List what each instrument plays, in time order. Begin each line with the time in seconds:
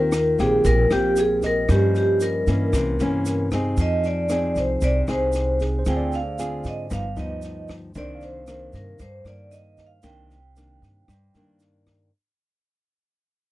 Already playing: upright bass D#2, nylon-string guitar D#3 A#3 C4 G4, tine electric piano F4, vibraphone A#4
0.12 cross-stick, snare, shaker
0.39 upright bass A#1, nylon-string guitar A#3 C4 G4, vibraphone G#4, kick, snare, shaker
0.64 upright bass A#1, nylon-string guitar A#2, vibraphone A#4, kick, snare, shaker
0.90 upright bass A#1, nylon-string guitar A#3 C4 G4, vibraphone G4, cross-stick, snare, shaker
1.16 vibraphone G#4, snare, shaker
1.42 tine electric piano D#5, kick, snare, shaker
1.46 vibraphone A#4
1.69 upright bass G2, nylon-string guitar G2 F3 A#3 C#4, vibraphone G4, kick, cross-stick, snare, shaker
1.95 vibraphone G4, snare, shaker
2.20 vibraphone A#4, snare, shaker
2.47 upright bass G2, nylon-string guitar E3 A#3 C#4, kick, snare, shaker
2.73 upright bass C2, nylon-string guitar C3, kick, cross-stick, snare, shaker
2.99 upright bass G2, nylon-string guitar E3 A#3 C#4, snare, shaker
3.26 snare, shaker
3.51 nylon-string guitar C4 D#4 G#4, kick, cross-stick, snare, shaker
3.77 upright bass F2, nylon-string guitar F3, kick, snare, shaker
3.81 vibraphone D#5
4.04 vibraphone D5, snare, shaker
4.29 nylon-string guitar C4 D#4 G#4, vibraphone D5, cross-stick, snare, shaker
4.56 upright bass C2, vibraphone C5, kick, snare, shaker
4.81 upright bass C2, nylon-string guitar C3, vibraphone D5, kick, snare, shaker
5.07 upright bass C2, nylon-string guitar C4 D#4 G#4, vibraphone C5, cross-stick, snare, shaker
5.33 snare, shaker
5.60 tine electric piano G#4, kick, snare, shaker
5.79 tine electric piano C5
5.86 upright bass D2, nylon-string guitar D3 C4 F4 G#4, vibraphone G5, kick, cross-stick, snare, shaker
5.97 tine electric piano D5
6.12 vibraphone F5, snare, shaker
6.38 nylon-string guitar C4 F4 G#4, snare, shaker
6.64 upright bass G#2, kick, snare, shaker
6.68 vibraphone D#5
6.90 upright bass G1, nylon-string guitar G2 F3 B3 D#4, vibraphone F5, kick, cross-stick, snare, shaker
7.16 upright bass D2, nylon-string guitar F3 B3 D#4, vibraphone D#5, snare, shaker
7.42 snare, shaker
7.68 kick, cross-stick, snare, shaker
7.95 upright bass C2, nylon-string guitar C3 D#3 A#3 D4, tine electric piano C5, vibraphone D5, kick, snare, shaker
8.15 tine electric piano F5
8.21 vibraphone C5, snare, shaker
8.47 nylon-string guitar D#3 A#3 D4, cross-stick, snare, shaker
8.73 upright bass G2, vibraphone A#4, kick, snare, shaker
8.99 upright bass G2, nylon-string guitar G2, vibraphone C5, kick, snare, shaker
9.25 upright bass G2, nylon-string guitar D#3 A#3, vibraphone D5, cross-stick, snare, shaker
9.51 vibraphone D#5, snare, shaker
9.77 kick, snare, shaker
9.86 vibraphone F5
10.03 upright bass C2, nylon-string guitar C3 D#3 A#3 D4, vibraphone G5, kick, cross-stick, snare, shaker
10.30 snare, shaker
10.56 nylon-string guitar D#3 A#3 D4, snare, shaker
10.82 upright bass G2, kick, snare, shaker
11.08 nylon-string guitar G2, upright bass G2, kick, cross-stick, snare, shaker
11.34 upright bass G2, nylon-string guitar D#3 A#3 D4, snare, shaker
11.60 snare, shaker
11.86 kick, cross-stick, snare, shaker